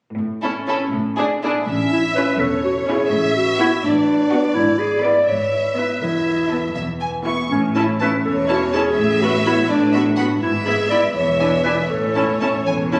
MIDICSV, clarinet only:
0, 0, Header, 1, 2, 480
1, 0, Start_track
1, 0, Key_signature, 3, "major"
1, 0, Tempo, 500000
1, 176, Time_signature, 6, 3, 24, 8
1, 1615, Tempo, 480000
1, 4975, Tempo, 493827
1, 7855, Tempo, 482703
1, 10735, Tempo, 506329
1, 12722, End_track
2, 0, Start_track
2, 0, Title_t, "Clarinet"
2, 0, Program_c, 0, 71
2, 1606, Note_on_c, 0, 61, 53
2, 1836, Note_off_c, 0, 61, 0
2, 1854, Note_on_c, 0, 64, 50
2, 1964, Note_off_c, 0, 64, 0
2, 2086, Note_on_c, 0, 71, 63
2, 2327, Note_on_c, 0, 69, 54
2, 2342, Note_off_c, 0, 71, 0
2, 2571, Note_off_c, 0, 69, 0
2, 2577, Note_on_c, 0, 66, 56
2, 2687, Note_off_c, 0, 66, 0
2, 2806, Note_on_c, 0, 68, 49
2, 3284, Note_off_c, 0, 68, 0
2, 3295, Note_on_c, 0, 66, 57
2, 3531, Note_off_c, 0, 66, 0
2, 3537, Note_on_c, 0, 64, 68
2, 3645, Note_off_c, 0, 64, 0
2, 3771, Note_on_c, 0, 62, 69
2, 4480, Note_on_c, 0, 64, 74
2, 4495, Note_off_c, 0, 62, 0
2, 4720, Note_on_c, 0, 68, 63
2, 4735, Note_off_c, 0, 64, 0
2, 4961, Note_on_c, 0, 74, 68
2, 4976, Note_off_c, 0, 68, 0
2, 5210, Note_on_c, 0, 73, 57
2, 5224, Note_off_c, 0, 74, 0
2, 5682, Note_off_c, 0, 73, 0
2, 5688, Note_on_c, 0, 71, 51
2, 5934, Note_on_c, 0, 64, 49
2, 5949, Note_off_c, 0, 71, 0
2, 6654, Note_off_c, 0, 64, 0
2, 7370, Note_on_c, 0, 61, 58
2, 7480, Note_off_c, 0, 61, 0
2, 7612, Note_on_c, 0, 64, 49
2, 7721, Note_off_c, 0, 64, 0
2, 7861, Note_on_c, 0, 71, 65
2, 7969, Note_off_c, 0, 71, 0
2, 8100, Note_on_c, 0, 69, 54
2, 8209, Note_off_c, 0, 69, 0
2, 8352, Note_on_c, 0, 66, 58
2, 8584, Note_on_c, 0, 68, 55
2, 8599, Note_off_c, 0, 66, 0
2, 9059, Note_on_c, 0, 66, 62
2, 9074, Note_off_c, 0, 68, 0
2, 9291, Note_off_c, 0, 66, 0
2, 9297, Note_on_c, 0, 64, 63
2, 9525, Note_off_c, 0, 64, 0
2, 9531, Note_on_c, 0, 62, 68
2, 10234, Note_off_c, 0, 62, 0
2, 10255, Note_on_c, 0, 64, 64
2, 10363, Note_off_c, 0, 64, 0
2, 10482, Note_on_c, 0, 68, 55
2, 10720, Note_off_c, 0, 68, 0
2, 10726, Note_on_c, 0, 74, 64
2, 10834, Note_off_c, 0, 74, 0
2, 10967, Note_on_c, 0, 73, 60
2, 11430, Note_off_c, 0, 73, 0
2, 11435, Note_on_c, 0, 71, 56
2, 11544, Note_off_c, 0, 71, 0
2, 11678, Note_on_c, 0, 69, 59
2, 12393, Note_off_c, 0, 69, 0
2, 12722, End_track
0, 0, End_of_file